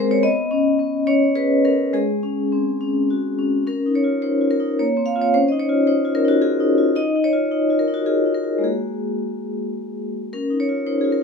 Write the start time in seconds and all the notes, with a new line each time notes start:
Already playing: G#3 C4 G#4 A#4 C5
0.11 C#5
0.23 B3 D#5
0.51 C#4
0.79 B3
1.07 C#4 C#5
1.35 G#4 B4
1.65 C#4 A#4
1.93 G#3 G#4
2.23 C#4
2.52 C4
2.81 C#4
3.10 F#4
3.39 C#4
3.67 C#4 A#4
3.86 D#4
3.95 C#5
4.04 F4
4.22 D#4 C5
4.41 F4
4.51 A#4
4.60 D#4
4.79 A#3 C#5
4.97 C4
5.06 F5
5.16 C4 F4
5.22 C#5
5.34 C#4 C5
5.48 D#4 D#5
5.60 C#5
5.69 F4
5.87 D#4 C5
6.05 F4
6.15 A#4
6.25 D#4 F#4
6.42 F4 G#4
6.60 D#4
6.78 F4
6.96 D#4 D#5
7.16 D#4
7.24 C#5
7.33 F4
7.51 D#4
7.70 F4
7.79 A#4
7.88 D#4
7.94 F#4
8.06 F4 G#4
8.26 D#4
8.35 A#4
8.44 F4
8.59 G#3 A#3 F#4
8.64 G#4
10.33 C#4 A#4
10.50 D#4
10.60 C#5
10.69 F4
10.86 D#4 C5
11.01 F4 G#4
11.12 A#4